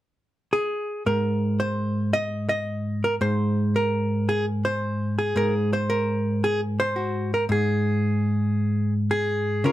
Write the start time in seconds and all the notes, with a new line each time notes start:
0.53 G#4
1.06 G#2 A#4
1.60 C5
2.13 D#5
2.49 D#5
3.04 A#4
3.21 G#2 C5
3.76 A#4
4.29 G#4
4.65 C5
5.19 G#4
5.36 G#2 A#4
5.73 C5
5.90 A#4
6.44 G#4
6.80 C5
6.96 F#4
7.34 A#4
7.49 G#2 G#4
9.11 G#4
9.64 C#3 C#4 F4 A#4